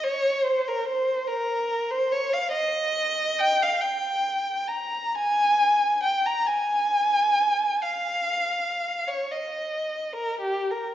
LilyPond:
\new Staff \with { instrumentName = "Violin" } { \time 6/8 \key aes \major \tempo 4. = 46 des''8 c''16 bes'16 c''8 bes'8. c''16 des''16 f''16 | ees''4 g''16 f''16 g''4 bes''8 | aes''4 g''16 bes''16 aes''4. | f''4~ f''16 des''16 ees''8. bes'16 g'16 bes'16 | }